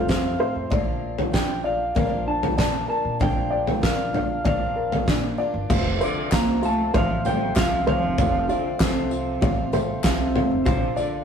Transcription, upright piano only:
0.00 0.71 A4 medium
0.00 0.38 C5 medium
0.09 0.71 C4 medium
0.40 0.71 C5 medium
0.71 1.63 D5 medium
1.33 2.25 D4 medium
1.64 2.56 D5 medium
1.95 2.87 A#4 medium
2.26 3.19 D4 medium
2.58 3.49 D5 medium
2.88 3.80 A#4 medium
3.20 4.12 D4 medium
3.50 4.43 D5 medium
3.82 4.74 A#4 medium
4.13 5.06 D4 medium
4.45 5.37 D5 medium
4.76 5.69 A#4 medium
5.07 5.69 D4 medium
5.38 5.69 D5 medium
5.70 6.61 F4 medium
6.01 6.92 C5 medium
6.32 7.23 F5 medium
6.62 7.54 F4 medium
6.94 7.85 C5 medium
7.25 8.17 F5 medium
7.56 8.47 F4 medium
7.87 9.11 C5 medium
8.18 9.42 F5 medium
8.49 9.40 F4 medium
9.42 10.34 F4 medium
9.73 10.66 C5 medium
10.04 10.66 F5 medium
10.36 10.64 F4 medium
10.66 11.24 F4 medium
10.96 11.24 D5 medium

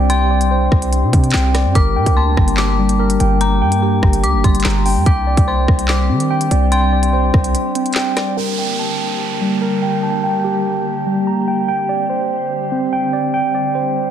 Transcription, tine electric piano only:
0.00 0.72 C4 medium
0.00 0.29 D5 medium
0.10 1.33 G5 loud
0.31 1.53 D5 medium
0.51 1.75 C5 medium
1.13 1.75 C4 medium
1.34 1.75 G5 medium
1.55 1.75 D5 medium
1.75 2.98 A#4 loud
1.96 3.19 G5 medium
2.17 3.41 A5 medium
2.79 4.03 G3 medium
3.00 4.24 A#4 loud
3.20 3.60 G5 medium
3.41 4.65 D6 loud
3.62 4.84 G5 medium
3.82 5.06 G4 medium
4.44 5.06 G3 medium
4.65 5.06 A#5 loud
4.86 5.05 G5 medium
5.06 6.29 G5 loud
5.27 6.50 D5 medium
5.47 6.72 C5 medium
6.10 7.34 C4 medium
6.31 6.71 G5 loud
6.51 6.91 D5 medium
6.72 7.95 G5 loud
6.93 8.16 D5 medium
7.13 8.37 C5 medium
7.75 8.37 C4 medium
7.96 8.37 G5 loud
8.17 8.37 D5 medium
8.37 9.60 A#4 medium
8.58 9.81 G5 medium
8.79 10.02 A5 medium
9.41 10.65 G3 medium
9.62 10.86 A#4 medium
9.82 10.22 G5 medium
10.03 11.27 A5 loud
10.24 11.47 G5 medium
10.44 11.68 G4 medium
11.06 11.68 G3 medium
11.27 11.68 A#5 medium
11.48 11.67 G5 medium
11.68 12.91 G5 loud
11.89 13.12 D5 medium
12.10 13.34 C5 medium
12.72 13.96 C4 medium
12.93 13.33 G5 loud
13.13 13.53 D5 medium
13.34 14.11 G5 loud
13.55 14.11 D5 medium
13.75 14.11 C5 medium

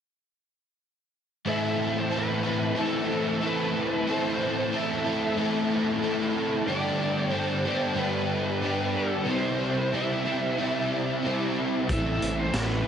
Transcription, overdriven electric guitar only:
1.45 2.75 A2 loud
1.45 2.75 E3 loud
1.45 2.10 A3 medium
1.45 2.10 C4 loud
1.45 2.11 E4 loud
1.45 2.11 A4 loud
2.10 2.46 A3 medium
2.10 2.44 C4 medium
2.10 2.44 E4 medium
2.10 2.43 A4 medium
2.43 2.75 A3 soft
2.43 2.75 C4 medium
2.43 2.75 E4 medium
2.43 2.76 A4 medium
2.75 3.74 A2 medium
2.75 3.74 E3 medium
2.75 3.40 A3 medium
2.75 3.41 C4 loud
2.75 3.42 E4 medium
2.75 3.42 A4 loud
3.41 4.06 A3 medium
3.41 4.06 C4 medium
3.41 4.06 E4 medium
3.41 4.07 A4 medium
4.06 5.05 A2 medium
4.06 5.05 E3 medium
4.06 4.71 A3 loud
4.06 4.72 C4 loud
4.06 4.73 E4 loud
4.06 4.73 A4 loud
4.72 5.06 A3 medium
4.72 5.04 C4 medium
4.72 5.04 E4 medium
4.72 5.03 A4 medium
5.05 5.37 A3 soft
5.05 5.37 C4 soft
5.05 5.37 E4 medium
5.05 5.38 A4 medium
5.36 6.35 A2 medium
5.36 6.35 E3 medium
5.36 6.01 A3 medium
5.36 6.02 C4 medium
5.36 6.02 E4 medium
5.36 6.03 A4 loud
6.02 6.66 A3 medium
6.02 6.66 C4 medium
6.02 6.66 E4 medium
6.02 6.67 A4 medium
6.67 7.65 G2 loud
6.67 7.66 D3 medium
6.67 7.30 G3 loud
6.67 7.31 B3 loud
6.67 7.31 D4 loud
6.67 7.33 G4 loud
7.30 7.65 G3 medium
7.30 7.64 B3 medium
7.30 7.64 D4 medium
7.30 7.64 G4 medium
7.64 7.94 G3 medium
7.64 7.95 B3 medium
7.64 7.95 D4 medium
7.64 7.95 G4 medium
7.95 8.94 G2 loud
7.95 8.94 D3 medium
7.95 8.60 G3 loud
7.95 8.61 B3 medium
7.95 8.62 D4 medium
7.95 8.63 G4 loud
8.61 9.25 G3 medium
8.61 9.26 B3 medium
8.61 9.26 D4 medium
8.61 9.27 G4 medium
9.25 9.91 C3 medium
9.25 9.92 G3 medium
9.25 9.93 C4 loud
9.25 9.95 E4 medium
9.92 10.57 C3 medium
9.92 10.26 G3 medium
9.92 10.26 C4 medium
9.92 10.25 E4 medium
10.25 10.57 G3 medium
10.25 10.59 C4 medium
10.25 10.60 E4 medium
10.58 11.22 C3 medium
10.58 11.24 G3 medium
10.58 11.25 C4 medium
10.58 11.25 E4 medium
11.23 11.87 C3 medium
11.23 11.88 G3 medium
11.23 11.91 C4 medium
11.23 11.92 E4 medium
11.90 12.88 A2 loud
11.90 12.53 E3 medium
11.90 12.53 A3 loud
11.90 12.54 C4 loud
11.90 12.56 E4 loud
12.53 12.88 E3 medium
12.53 12.88 A3 medium
12.53 12.87 C4 medium
12.53 12.86 E4 medium

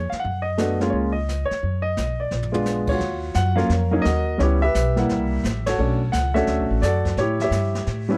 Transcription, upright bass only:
0.13 muted upright bass stroke soft
0.25 0.90 F#2 medium
0.93 1.46 C#2 medium
1.51 muted upright bass stroke soft
1.63 1.95 F#2 medium
1.98 2.29 B1 medium
2.32 2.97 A#1 medium
3.00 3.34 D#2 medium
3.35 3.69 F#2 medium
3.69 4.03 F2 medium
4.05 4.39 D#2 medium
4.39 4.73 C#2 medium
4.75 5.08 B1 medium
5.10 5.43 C2 medium
5.44 5.77 A1 medium
5.79 6.12 B1 medium
6.13 6.47 C#2 medium
6.47 6.59 D2 medium
6.59 6.70 B1 medium
6.70 6.81 A1 medium
6.82 7.16 F#2 medium
7.17 7.50 A2 medium
7.51 7.85 G2 medium
7.87 8.18 A2 medium

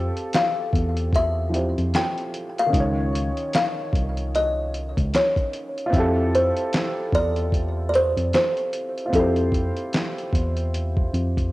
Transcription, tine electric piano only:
0.00 0.10 F2 medium
0.73 1.72 E2 loud
1.78 1.92 F2 medium
2.74 3.30 C#2 loud
3.93 4.92 C2 medium
4.98 5.12 C#2 medium
5.93 6.50 F2 medium
7.13 8.12 E2 medium
8.17 8.32 F2 medium
9.14 9.70 F2 loud
10.33 11.05 E2 medium
11.14 11.49 F2 medium

